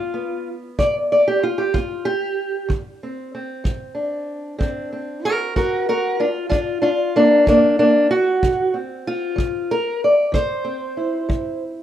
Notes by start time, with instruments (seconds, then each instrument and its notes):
Already playing: steel-string acoustic guitar B3 F4
0.14 steel-string acoustic guitar B3
0.79 steel-string acoustic guitar G3 D5, kick
1.12 steel-string acoustic guitar D5
1.28 steel-string acoustic guitar G4
1.43 steel-string acoustic guitar F4
1.58 steel-string acoustic guitar G4
1.74 steel-string acoustic guitar B3 F4, kick
2.05 steel-string acoustic guitar G4
2.69 steel-string acoustic guitar D3, kick
3.03 steel-string acoustic guitar C4
3.35 steel-string acoustic guitar C4
3.64 steel-string acoustic guitar F#3, kick
3.95 steel-string acoustic guitar D4
4.58 steel-string acoustic guitar D3 C4 D4, kick
4.93 steel-string acoustic guitar C4
5.24 steel-string acoustic guitar F#4 A#4
5.56 steel-string acoustic guitar F#3 F#4 A#4, kick
5.89 steel-string acoustic guitar F#4 A#4
6.20 steel-string acoustic guitar D4 F4
6.49 steel-string acoustic guitar D3 D4 F4, kick
6.82 steel-string acoustic guitar D4 F4
7.16 steel-string acoustic guitar A#3 D4
7.46 steel-string acoustic guitar F#3 A#3 D4, kick
7.79 steel-string acoustic guitar A#3 D4
8.11 steel-string acoustic guitar F#4
8.43 steel-string acoustic guitar D3, kick
8.74 steel-string acoustic guitar C4
9.07 steel-string acoustic guitar F4
9.36 steel-string acoustic guitar F#3, kick
9.71 steel-string acoustic guitar A#4
10.04 steel-string acoustic guitar D5
10.32 steel-string acoustic guitar C3 C5, kick
10.65 steel-string acoustic guitar C4
10.97 steel-string acoustic guitar E4
11.29 steel-string acoustic guitar G3, kick